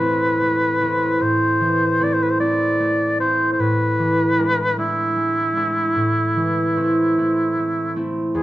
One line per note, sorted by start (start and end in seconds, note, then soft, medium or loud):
0.00 1.20 A2 soft
0.00 1.59 E3 soft
0.00 0.39 A3 soft
0.00 0.80 C4 soft
0.00 0.80 E4 soft
0.00 1.23 B4 soft
0.41 0.79 A3 soft
0.81 1.99 A3 soft
0.81 2.00 C4 soft
0.81 2.00 E4 soft
1.21 3.58 A2 soft
1.21 2.05 C5 soft
1.61 3.62 E3 soft
2.00 2.38 A3 soft
2.00 2.39 C4 soft
2.00 2.39 E4 soft
2.00 2.15 D5 soft
2.14 2.24 C5 soft
2.23 2.32 B4 soft
2.30 2.40 C5 soft
2.39 2.79 A3 soft
2.39 3.19 C4 soft
2.39 3.20 E4 soft
2.39 3.18 D5 soft
2.80 3.19 A3 soft
3.20 3.62 A3 soft
3.20 3.63 C4 soft
3.20 4.38 E4 soft
3.20 3.52 C5 soft
3.53 3.62 C5 soft
3.59 5.95 A2 soft
3.59 4.78 B4 soft
3.99 5.98 E3 soft
4.39 4.77 G#3 soft
4.39 4.77 D4 soft
4.39 4.78 E4 soft
4.78 5.15 G#3 soft
4.78 5.55 D4 soft
4.78 7.93 E4 soft
4.78 5.56 E4 soft
5.16 5.55 G#3 soft
5.56 5.99 G#3 soft
5.56 5.99 D4 soft
5.56 6.76 E4 soft
5.96 8.39 A2 soft
6.36 8.38 E3 soft
6.76 7.16 A3 soft
6.76 7.17 C4 soft
6.76 7.17 E4 soft
7.18 7.56 A3 soft
7.18 7.95 C4 soft
7.18 7.96 E4 soft
7.57 7.95 A3 soft
7.96 8.38 A3 soft
7.96 8.38 C4 soft
7.96 8.43 E4 soft
8.35 8.43 E2 soft
8.35 8.43 G#4 soft